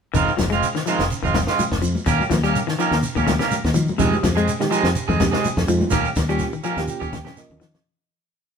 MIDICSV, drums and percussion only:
0, 0, Header, 1, 3, 480
1, 0, Start_track
1, 0, Key_signature, -4, "minor"
1, 0, Tempo, 481541
1, 145, Time_signature, 4, 2, 24, 8
1, 8544, End_track
2, 0, Start_track
2, 0, Title_t, "Shekere"
2, 146, Note_on_c, 9, 82, 79
2, 246, Note_off_c, 9, 82, 0
2, 278, Note_on_c, 9, 82, 25
2, 378, Note_off_c, 9, 82, 0
2, 384, Note_on_c, 9, 82, 61
2, 484, Note_off_c, 9, 82, 0
2, 521, Note_on_c, 9, 82, 26
2, 621, Note_off_c, 9, 82, 0
2, 630, Note_on_c, 9, 82, 71
2, 730, Note_off_c, 9, 82, 0
2, 753, Note_on_c, 9, 82, 24
2, 853, Note_off_c, 9, 82, 0
2, 865, Note_on_c, 9, 82, 67
2, 964, Note_off_c, 9, 82, 0
2, 995, Note_on_c, 9, 82, 26
2, 1094, Note_off_c, 9, 82, 0
2, 1112, Note_on_c, 9, 82, 71
2, 1212, Note_off_c, 9, 82, 0
2, 1241, Note_on_c, 9, 82, 25
2, 1341, Note_off_c, 9, 82, 0
2, 1353, Note_on_c, 9, 82, 59
2, 1452, Note_off_c, 9, 82, 0
2, 1479, Note_on_c, 9, 82, 25
2, 1579, Note_off_c, 9, 82, 0
2, 1591, Note_on_c, 9, 82, 70
2, 1691, Note_off_c, 9, 82, 0
2, 1727, Note_on_c, 9, 82, 27
2, 1826, Note_off_c, 9, 82, 0
2, 1829, Note_on_c, 9, 82, 63
2, 1928, Note_off_c, 9, 82, 0
2, 1959, Note_on_c, 9, 82, 25
2, 2058, Note_off_c, 9, 82, 0
2, 2065, Note_on_c, 9, 82, 78
2, 2165, Note_off_c, 9, 82, 0
2, 2210, Note_on_c, 9, 82, 29
2, 2304, Note_off_c, 9, 82, 0
2, 2304, Note_on_c, 9, 82, 54
2, 2404, Note_off_c, 9, 82, 0
2, 2443, Note_on_c, 9, 82, 27
2, 2542, Note_off_c, 9, 82, 0
2, 2549, Note_on_c, 9, 82, 84
2, 2648, Note_off_c, 9, 82, 0
2, 2684, Note_on_c, 9, 82, 25
2, 2784, Note_off_c, 9, 82, 0
2, 2792, Note_on_c, 9, 82, 62
2, 2892, Note_off_c, 9, 82, 0
2, 2920, Note_on_c, 9, 82, 23
2, 3020, Note_off_c, 9, 82, 0
2, 3020, Note_on_c, 9, 82, 76
2, 3120, Note_off_c, 9, 82, 0
2, 3155, Note_on_c, 9, 82, 26
2, 3254, Note_off_c, 9, 82, 0
2, 3263, Note_on_c, 9, 82, 61
2, 3363, Note_off_c, 9, 82, 0
2, 3389, Note_on_c, 9, 82, 26
2, 3488, Note_off_c, 9, 82, 0
2, 3501, Note_on_c, 9, 82, 73
2, 3600, Note_off_c, 9, 82, 0
2, 3629, Note_on_c, 9, 82, 29
2, 3728, Note_off_c, 9, 82, 0
2, 3731, Note_on_c, 9, 82, 63
2, 3831, Note_off_c, 9, 82, 0
2, 3864, Note_on_c, 9, 82, 25
2, 3963, Note_off_c, 9, 82, 0
2, 3977, Note_on_c, 9, 82, 84
2, 4077, Note_off_c, 9, 82, 0
2, 4113, Note_on_c, 9, 82, 28
2, 4212, Note_off_c, 9, 82, 0
2, 4229, Note_on_c, 9, 82, 58
2, 4329, Note_off_c, 9, 82, 0
2, 4354, Note_on_c, 9, 82, 26
2, 4453, Note_off_c, 9, 82, 0
2, 4469, Note_on_c, 9, 82, 88
2, 4569, Note_off_c, 9, 82, 0
2, 4597, Note_on_c, 9, 82, 27
2, 4697, Note_off_c, 9, 82, 0
2, 4708, Note_on_c, 9, 82, 74
2, 4808, Note_off_c, 9, 82, 0
2, 4938, Note_on_c, 9, 82, 77
2, 5038, Note_off_c, 9, 82, 0
2, 5083, Note_on_c, 9, 82, 26
2, 5183, Note_off_c, 9, 82, 0
2, 5188, Note_on_c, 9, 82, 63
2, 5287, Note_off_c, 9, 82, 0
2, 5320, Note_on_c, 9, 82, 26
2, 5420, Note_off_c, 9, 82, 0
2, 5435, Note_on_c, 9, 82, 71
2, 5535, Note_off_c, 9, 82, 0
2, 5557, Note_on_c, 9, 82, 31
2, 5656, Note_off_c, 9, 82, 0
2, 5659, Note_on_c, 9, 82, 62
2, 5759, Note_off_c, 9, 82, 0
2, 5790, Note_on_c, 9, 82, 28
2, 5887, Note_off_c, 9, 82, 0
2, 5887, Note_on_c, 9, 82, 93
2, 5986, Note_off_c, 9, 82, 0
2, 6025, Note_on_c, 9, 82, 30
2, 6125, Note_off_c, 9, 82, 0
2, 6137, Note_on_c, 9, 82, 69
2, 6237, Note_off_c, 9, 82, 0
2, 6269, Note_on_c, 9, 82, 29
2, 6368, Note_off_c, 9, 82, 0
2, 6368, Note_on_c, 9, 82, 85
2, 6468, Note_off_c, 9, 82, 0
2, 6502, Note_on_c, 9, 82, 28
2, 6602, Note_off_c, 9, 82, 0
2, 6615, Note_on_c, 9, 82, 70
2, 6714, Note_off_c, 9, 82, 0
2, 6747, Note_on_c, 9, 82, 27
2, 6846, Note_off_c, 9, 82, 0
2, 6854, Note_on_c, 9, 82, 79
2, 6953, Note_off_c, 9, 82, 0
2, 6994, Note_on_c, 9, 82, 26
2, 7094, Note_off_c, 9, 82, 0
2, 7106, Note_on_c, 9, 82, 64
2, 7205, Note_off_c, 9, 82, 0
2, 7237, Note_on_c, 9, 82, 27
2, 7337, Note_off_c, 9, 82, 0
2, 7343, Note_on_c, 9, 82, 78
2, 7442, Note_off_c, 9, 82, 0
2, 7470, Note_on_c, 9, 82, 29
2, 7570, Note_off_c, 9, 82, 0
2, 7584, Note_on_c, 9, 82, 61
2, 7684, Note_off_c, 9, 82, 0
2, 7719, Note_on_c, 9, 82, 27
2, 7818, Note_off_c, 9, 82, 0
2, 8544, End_track
3, 0, Start_track
3, 0, Title_t, "Drums"
3, 145, Note_on_c, 9, 36, 80
3, 145, Note_on_c, 9, 42, 60
3, 245, Note_off_c, 9, 36, 0
3, 245, Note_off_c, 9, 42, 0
3, 384, Note_on_c, 9, 63, 80
3, 387, Note_on_c, 9, 36, 59
3, 391, Note_on_c, 9, 42, 50
3, 394, Note_on_c, 9, 38, 66
3, 484, Note_off_c, 9, 63, 0
3, 487, Note_off_c, 9, 36, 0
3, 491, Note_off_c, 9, 42, 0
3, 494, Note_off_c, 9, 38, 0
3, 517, Note_on_c, 9, 42, 45
3, 616, Note_off_c, 9, 42, 0
3, 622, Note_on_c, 9, 42, 54
3, 722, Note_off_c, 9, 42, 0
3, 756, Note_on_c, 9, 38, 52
3, 856, Note_off_c, 9, 38, 0
3, 866, Note_on_c, 9, 42, 50
3, 965, Note_off_c, 9, 42, 0
3, 992, Note_on_c, 9, 42, 51
3, 995, Note_on_c, 9, 38, 59
3, 1092, Note_off_c, 9, 42, 0
3, 1095, Note_off_c, 9, 38, 0
3, 1097, Note_on_c, 9, 42, 61
3, 1197, Note_off_c, 9, 42, 0
3, 1230, Note_on_c, 9, 36, 50
3, 1330, Note_off_c, 9, 36, 0
3, 1335, Note_on_c, 9, 42, 47
3, 1338, Note_on_c, 9, 38, 67
3, 1341, Note_on_c, 9, 36, 60
3, 1348, Note_on_c, 9, 63, 90
3, 1435, Note_off_c, 9, 42, 0
3, 1438, Note_off_c, 9, 38, 0
3, 1441, Note_off_c, 9, 36, 0
3, 1448, Note_off_c, 9, 63, 0
3, 1465, Note_on_c, 9, 38, 60
3, 1564, Note_off_c, 9, 38, 0
3, 1584, Note_on_c, 9, 42, 66
3, 1589, Note_on_c, 9, 63, 72
3, 1683, Note_off_c, 9, 42, 0
3, 1688, Note_off_c, 9, 63, 0
3, 1710, Note_on_c, 9, 36, 56
3, 1712, Note_on_c, 9, 38, 62
3, 1810, Note_off_c, 9, 36, 0
3, 1811, Note_off_c, 9, 38, 0
3, 1814, Note_on_c, 9, 42, 55
3, 1914, Note_off_c, 9, 42, 0
3, 1945, Note_on_c, 9, 63, 67
3, 2044, Note_off_c, 9, 63, 0
3, 2051, Note_on_c, 9, 42, 62
3, 2054, Note_on_c, 9, 38, 25
3, 2060, Note_on_c, 9, 36, 83
3, 2151, Note_off_c, 9, 42, 0
3, 2154, Note_off_c, 9, 38, 0
3, 2160, Note_off_c, 9, 36, 0
3, 2193, Note_on_c, 9, 63, 64
3, 2293, Note_off_c, 9, 63, 0
3, 2297, Note_on_c, 9, 42, 48
3, 2300, Note_on_c, 9, 38, 65
3, 2301, Note_on_c, 9, 36, 67
3, 2309, Note_on_c, 9, 63, 88
3, 2397, Note_off_c, 9, 42, 0
3, 2399, Note_off_c, 9, 38, 0
3, 2400, Note_off_c, 9, 36, 0
3, 2409, Note_off_c, 9, 63, 0
3, 2433, Note_on_c, 9, 42, 47
3, 2532, Note_off_c, 9, 42, 0
3, 2542, Note_on_c, 9, 42, 60
3, 2642, Note_off_c, 9, 42, 0
3, 2674, Note_on_c, 9, 38, 61
3, 2774, Note_off_c, 9, 38, 0
3, 2784, Note_on_c, 9, 42, 45
3, 2884, Note_off_c, 9, 42, 0
3, 2911, Note_on_c, 9, 42, 45
3, 2914, Note_on_c, 9, 38, 64
3, 3011, Note_off_c, 9, 42, 0
3, 3014, Note_off_c, 9, 38, 0
3, 3019, Note_on_c, 9, 42, 51
3, 3119, Note_off_c, 9, 42, 0
3, 3151, Note_on_c, 9, 36, 58
3, 3162, Note_on_c, 9, 63, 65
3, 3251, Note_off_c, 9, 36, 0
3, 3262, Note_off_c, 9, 63, 0
3, 3262, Note_on_c, 9, 42, 47
3, 3264, Note_on_c, 9, 36, 59
3, 3265, Note_on_c, 9, 38, 67
3, 3273, Note_on_c, 9, 63, 88
3, 3362, Note_off_c, 9, 42, 0
3, 3363, Note_off_c, 9, 36, 0
3, 3365, Note_off_c, 9, 38, 0
3, 3372, Note_off_c, 9, 63, 0
3, 3393, Note_on_c, 9, 42, 45
3, 3395, Note_on_c, 9, 38, 59
3, 3492, Note_off_c, 9, 42, 0
3, 3495, Note_off_c, 9, 38, 0
3, 3503, Note_on_c, 9, 63, 65
3, 3509, Note_on_c, 9, 42, 60
3, 3603, Note_off_c, 9, 63, 0
3, 3609, Note_off_c, 9, 42, 0
3, 3633, Note_on_c, 9, 36, 62
3, 3639, Note_on_c, 9, 38, 62
3, 3733, Note_off_c, 9, 36, 0
3, 3739, Note_off_c, 9, 38, 0
3, 3742, Note_on_c, 9, 42, 49
3, 3749, Note_on_c, 9, 63, 67
3, 3842, Note_off_c, 9, 42, 0
3, 3849, Note_off_c, 9, 63, 0
3, 3879, Note_on_c, 9, 63, 74
3, 3979, Note_off_c, 9, 63, 0
3, 3987, Note_on_c, 9, 36, 80
3, 3987, Note_on_c, 9, 42, 63
3, 3990, Note_on_c, 9, 38, 26
3, 4086, Note_off_c, 9, 36, 0
3, 4087, Note_off_c, 9, 42, 0
3, 4090, Note_off_c, 9, 38, 0
3, 4122, Note_on_c, 9, 63, 71
3, 4219, Note_on_c, 9, 42, 52
3, 4222, Note_off_c, 9, 63, 0
3, 4222, Note_on_c, 9, 38, 66
3, 4225, Note_on_c, 9, 36, 69
3, 4238, Note_on_c, 9, 63, 87
3, 4319, Note_off_c, 9, 42, 0
3, 4322, Note_off_c, 9, 38, 0
3, 4324, Note_off_c, 9, 36, 0
3, 4338, Note_off_c, 9, 63, 0
3, 4358, Note_on_c, 9, 42, 47
3, 4458, Note_off_c, 9, 42, 0
3, 4460, Note_on_c, 9, 42, 56
3, 4559, Note_off_c, 9, 42, 0
3, 4591, Note_on_c, 9, 38, 58
3, 4690, Note_off_c, 9, 38, 0
3, 4707, Note_on_c, 9, 42, 51
3, 4806, Note_off_c, 9, 42, 0
3, 4830, Note_on_c, 9, 42, 54
3, 4833, Note_on_c, 9, 38, 69
3, 4930, Note_off_c, 9, 42, 0
3, 4933, Note_off_c, 9, 38, 0
3, 4935, Note_on_c, 9, 42, 64
3, 5034, Note_off_c, 9, 42, 0
3, 5072, Note_on_c, 9, 36, 57
3, 5074, Note_on_c, 9, 63, 68
3, 5172, Note_off_c, 9, 36, 0
3, 5173, Note_off_c, 9, 63, 0
3, 5182, Note_on_c, 9, 42, 53
3, 5183, Note_on_c, 9, 36, 66
3, 5185, Note_on_c, 9, 38, 70
3, 5191, Note_on_c, 9, 63, 84
3, 5282, Note_off_c, 9, 42, 0
3, 5283, Note_off_c, 9, 36, 0
3, 5285, Note_off_c, 9, 38, 0
3, 5291, Note_off_c, 9, 63, 0
3, 5316, Note_on_c, 9, 38, 65
3, 5416, Note_off_c, 9, 38, 0
3, 5423, Note_on_c, 9, 42, 67
3, 5433, Note_on_c, 9, 63, 73
3, 5523, Note_off_c, 9, 42, 0
3, 5533, Note_off_c, 9, 63, 0
3, 5553, Note_on_c, 9, 36, 60
3, 5555, Note_on_c, 9, 38, 62
3, 5653, Note_off_c, 9, 36, 0
3, 5655, Note_off_c, 9, 38, 0
3, 5666, Note_on_c, 9, 42, 56
3, 5766, Note_off_c, 9, 42, 0
3, 5793, Note_on_c, 9, 63, 77
3, 5892, Note_off_c, 9, 63, 0
3, 5905, Note_on_c, 9, 36, 91
3, 5907, Note_on_c, 9, 42, 75
3, 6005, Note_off_c, 9, 36, 0
3, 6007, Note_off_c, 9, 42, 0
3, 6144, Note_on_c, 9, 36, 74
3, 6148, Note_on_c, 9, 63, 85
3, 6150, Note_on_c, 9, 42, 51
3, 6153, Note_on_c, 9, 38, 67
3, 6244, Note_off_c, 9, 36, 0
3, 6248, Note_off_c, 9, 63, 0
3, 6250, Note_off_c, 9, 42, 0
3, 6253, Note_off_c, 9, 38, 0
3, 6280, Note_on_c, 9, 42, 52
3, 6380, Note_off_c, 9, 42, 0
3, 6385, Note_on_c, 9, 36, 60
3, 6389, Note_on_c, 9, 42, 60
3, 6392, Note_on_c, 9, 38, 25
3, 6485, Note_off_c, 9, 36, 0
3, 6489, Note_off_c, 9, 42, 0
3, 6492, Note_off_c, 9, 38, 0
3, 6628, Note_on_c, 9, 42, 47
3, 6727, Note_off_c, 9, 42, 0
3, 6755, Note_on_c, 9, 42, 53
3, 6758, Note_on_c, 9, 38, 66
3, 6855, Note_off_c, 9, 42, 0
3, 6858, Note_off_c, 9, 38, 0
3, 6865, Note_on_c, 9, 42, 64
3, 6965, Note_off_c, 9, 42, 0
3, 6994, Note_on_c, 9, 36, 65
3, 7094, Note_off_c, 9, 36, 0
3, 7106, Note_on_c, 9, 36, 59
3, 7106, Note_on_c, 9, 42, 51
3, 7107, Note_on_c, 9, 63, 76
3, 7109, Note_on_c, 9, 38, 68
3, 7205, Note_off_c, 9, 36, 0
3, 7205, Note_off_c, 9, 42, 0
3, 7206, Note_off_c, 9, 63, 0
3, 7208, Note_off_c, 9, 38, 0
3, 7240, Note_on_c, 9, 42, 45
3, 7243, Note_on_c, 9, 38, 67
3, 7246, Note_on_c, 9, 64, 90
3, 7340, Note_off_c, 9, 42, 0
3, 7343, Note_off_c, 9, 38, 0
3, 7346, Note_off_c, 9, 64, 0
3, 7348, Note_on_c, 9, 38, 46
3, 7447, Note_off_c, 9, 38, 0
3, 7486, Note_on_c, 9, 64, 90
3, 7586, Note_off_c, 9, 64, 0
3, 7589, Note_on_c, 9, 64, 69
3, 7591, Note_on_c, 9, 38, 79
3, 7689, Note_off_c, 9, 64, 0
3, 7691, Note_off_c, 9, 38, 0
3, 7719, Note_on_c, 9, 38, 61
3, 7724, Note_on_c, 9, 64, 80
3, 7818, Note_off_c, 9, 38, 0
3, 7824, Note_off_c, 9, 64, 0
3, 8544, End_track
0, 0, End_of_file